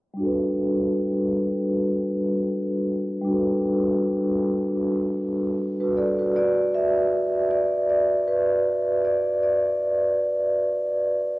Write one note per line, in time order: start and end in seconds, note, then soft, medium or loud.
0.14 3.20 G3 medium
0.14 3.21 D4 medium
0.20 3.23 F#4 medium
0.20 3.24 A4 medium
0.26 3.26 B4 medium
3.22 6.28 G3 medium
3.22 6.29 D4 medium
3.28 5.54 F#4 medium
3.28 5.55 A4 medium
3.34 5.57 B4 medium
5.80 5.96 F#4 soft
5.80 5.95 B4 medium
5.97 6.17 A4 medium
5.97 6.17 D5 medium
6.19 6.55 F#4 medium
6.19 6.55 B4 medium
6.36 6.75 D5 medium
6.74 7.53 E5 loud
7.51 7.88 D5 medium
7.90 8.28 D5 medium
8.28 9.06 B4 medium
9.05 9.42 D5 medium
9.43 10.15 D5 medium